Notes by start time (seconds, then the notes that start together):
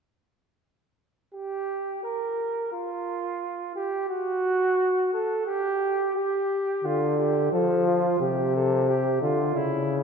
1.34 G4
2.03 A#4
2.72 F4
3.76 G4
4.09 F#4
5.13 A4
5.47 G4
6.17 G4
6.84 D3 F4
7.19 G4
7.52 F3 A4
7.87 F4
8.20 C3 G4
8.56 A4
8.89 G4
9.21 D3 F4
9.56 C#3 E4